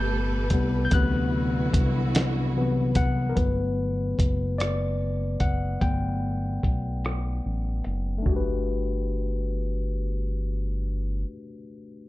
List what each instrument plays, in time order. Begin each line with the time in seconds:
Already playing: analog synth bass G1, tine electric piano C3 G3 B3 B5 G6, string section A3 G4 A4 B4
0.50 analog synth bass C2, tine electric piano C3 G3 B3, kick, closed hi-hat
0.85 tine electric piano G6
0.91 analog synth bass D2, string section C3 D3 E4 F#4, tine electric piano C3 E3 F#3 F#6, kick, closed hi-hat
0.95 tine electric piano B3
1.74 analog synth bass C2, kick, closed hi-hat
2.15 snare, closed hi-hat
2.57 tine electric piano C3 E3 F#3 B3
2.95 tine electric piano F#5, kick, closed hi-hat
3.29 tine electric piano A#4
3.36 analog synth bass G1, tine electric piano F#3 A3 B3 B4, kick, closed hi-hat
4.19 analog synth bass F#1, kick, closed hi-hat
4.58 tine electric piano D5, cross-stick, closed hi-hat
5.40 analog synth bass F#1, tine electric piano F#5, kick, closed hi-hat
5.81 analog synth bass G1, tine electric piano F#3 A3 B3 G5, kick, closed hi-hat
6.63 analog synth bass B1, kick, closed hi-hat
7.05 cross-stick, closed hi-hat
7.46 analog synth bass A1
7.84 analog synth bass F#1, closed hi-hat
8.18 tine electric piano A3
8.22 tine electric piano D4, kick, floor tom
8.27 analog synth bass G1, tine electric piano F#4
8.32 tine electric piano G4
8.36 tine electric piano B4